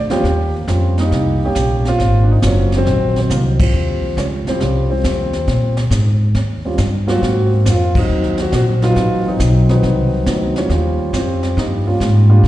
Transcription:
Already playing: upright bass D2
0.10 grand piano D#2 G3 A#3 C4 C#4 F4 G4, snare
0.24 upright bass D#2, brush sweep, kick, snare
0.67 upright bass F2, grand piano G3 C4 C#4 F4, kick, snare, hi-hat pedal
0.98 grand piano G3 A#3 D#4, snare
1.12 upright bass C2, brush sweep, kick, snare
1.45 grand piano A#3 C#4 G4
1.55 upright bass A#1, kick, snare, hi-hat pedal
1.85 grand piano C4 F4, snare
1.89 grand piano A#3
1.98 upright bass G#1, brush sweep, kick, snare
2.24 grand piano D4
2.31 grand piano D#4
2.42 upright bass F#1, grand piano F#3 A#3 C4 F4, kick, snare, hi-hat pedal
2.47 grand piano C#4
2.72 snare
2.77 grand piano D#3 F#3 C4
2.86 upright bass A#1, brush sweep, kick, snare
3.16 grand piano C4, snare
3.30 upright bass C2, grand piano A#3, kick, snare, hi-hat pedal
3.60 grand piano G3 C4, kick, crash
3.64 grand piano F3
3.73 upright bass D#2, brush sweep
4.17 upright bass C#2, grand piano C#4, kick, snare, hi-hat pedal
4.47 grand piano F3 G3 C4, muted upright bass stroke, snare
4.60 upright bass C2, grand piano G3 C4 C#4 F4, brush sweep, kick, snare
4.90 grand piano F3 G3 C4
5.04 upright bass D#2, kick, snare, hi-hat pedal
5.33 snare
5.47 upright bass A#2, brush sweep, kick, snare
5.77 snare
5.91 upright bass G#2, kick, snare, hi-hat pedal
6.35 upright bass D#2, brush sweep, kick, snare
6.65 grand piano G3 C4 C#4 F4
6.78 upright bass G2, kick, snare, hi-hat pedal
7.07 grand piano F#3 A#3 C4 F4 F#4, snare
7.12 grand piano C4
7.22 upright bass G#2, brush sweep, kick, snare
7.65 upright bass F2, kick, snare, hi-hat pedal
7.70 grand piano F4
7.95 grand piano F#3 C4 D#4, kick, crash
8.09 upright bass D#2, brush sweep
8.24 snare
8.38 grand piano F#4, snare
8.52 upright bass A#1, grand piano F#4, kick, snare, hi-hat pedal
8.82 grand piano F#3 C4 D#4 F4 B4, snare
8.96 upright bass A1, brush sweep, kick, snare
9.28 grand piano F#3 C4 D#4
9.40 upright bass B1, kick, snare, hi-hat pedal
9.69 grand piano F#3 C4 D#4 B4, snare
9.73 grand piano D#3 F#3
9.83 upright bass C2, brush sweep, kick, snare
10.26 upright bass D2, grand piano F#3 B3 C4 D#4, kick, snare, hi-hat pedal
10.56 grand piano F3 G3 C#4, snare
10.69 upright bass D#2, grand piano G3 C#4 F4 C5, brush sweep, kick, snare
11.13 upright bass F2, grand piano C4, kick, snare, hi-hat pedal
11.17 grand piano F3 G3
11.43 snare
11.57 upright bass G2, grand piano G3 A#3 D#4, brush sweep, kick, snare
11.87 grand piano A#3 C#4 F4
12.00 upright bass G#2, kick, snare, hi-hat pedal
12.29 grand piano G3 A#3 D4 F4
12.43 upright bass G2, brush sweep, kick, snare

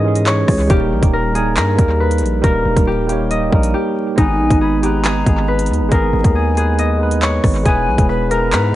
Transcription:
Already playing: 808-style bass G#2, tine electric piano E3 G#3 C#4 D#4 G4 G#4, harp G#4 A#4 D#5
0.03 tine electric piano E3 G#3 C#4
0.08 tine electric piano G#4
0.16 closed hi-hat
0.26 harp C#5, clap
0.48 808-style bass C#2, kick, cross-stick, open hi-hat
0.67 808-style bass D#1, tine electric piano G3 A#3 D#4, harp G4, kick, closed hi-hat
0.73 tine electric piano A#4
0.92 808-style bass A#1
1.03 808-style bass D#1, kick, closed hi-hat
1.13 harp A#4
1.33 tine electric piano G3 A#3 D#4, harp G#4, closed hi-hat
1.38 tine electric piano A#4
1.57 808-style bass G2, harp A#4, clap, closed hi-hat
1.76 808-style bass D#2, tine electric piano G3 A#3 D#4, kick, closed hi-hat
1.81 tine electric piano A#4
2.00 harp B4
2.11 closed hi-hat
2.18 808-style bass A#1, closed hi-hat
2.26 closed hi-hat
2.41 808-style bass D#1, tine electric piano G3 A#3 D#4, harp A#4, kick, closed hi-hat
2.46 tine electric piano A#4
2.65 808-style bass D#1
2.76 808-style bass D#1, kick, closed hi-hat
2.87 harp G4
3.07 tine electric piano G3 A#3 D#4, harp G4, closed hi-hat
3.12 tine electric piano C#5
3.31 harp D#5, closed hi-hat
3.50 808-style bass A#1, tine electric piano G3 A#3 D#4, kick
3.55 tine electric piano A#4
3.63 closed hi-hat
3.74 harp G4
4.16 808-style bass G#1, tine electric piano G#3 B3 D#4, harp D#4, flute G#5, kick, closed hi-hat
4.21 tine electric piano B4
4.40 808-style bass A#1
4.50 808-style bass G#1, kick, closed hi-hat
4.61 harp G#4, flute B5
4.80 tine electric piano G#3 B3 D#4, harp G4, flute A#5, closed hi-hat
4.85 tine electric piano B4
5.05 harp G#4, clap, closed hi-hat
5.24 808-style bass G#1, tine electric piano G#3 B3 D#4, kick, closed hi-hat
5.29 tine electric piano G#4
5.48 harp B4
5.59 closed hi-hat
5.66 808-style bass D#2, closed hi-hat
5.74 closed hi-hat
5.81 808-style bass G#1
5.89 808-style bass G#1, tine electric piano G#3 B3 D#4, harp A#4, kick, closed hi-hat
5.94 tine electric piano G#4
6.13 808-style bass G#1
6.24 808-style bass D#2, kick, closed hi-hat
6.35 harp G#4, flute G#5
6.54 tine electric piano G#3 B3 D#4, harp G#4, closed hi-hat
6.59 tine electric piano B4
6.79 harp D#5, closed hi-hat
6.98 tine electric piano G#3 B3 D#4
7.03 tine electric piano B4
7.11 closed hi-hat
7.22 harp C#5, clap
7.44 808-style bass G#1, kick, cross-stick, open hi-hat
7.63 808-style bass E1, tine electric piano G#3 B3 E4, harp G#4, flute G#5, kick, closed hi-hat
7.68 tine electric piano B4
7.87 808-style bass B1
7.98 808-style bass E1, kick, closed hi-hat
8.09 harp B4, flute B5
8.28 tine electric piano G#3 B3 E4, harp A#4, flute A#5, closed hi-hat
8.33 tine electric piano G#4
8.52 808-style bass G#2, harp B4, clap, closed hi-hat
8.71 tine electric piano G#3

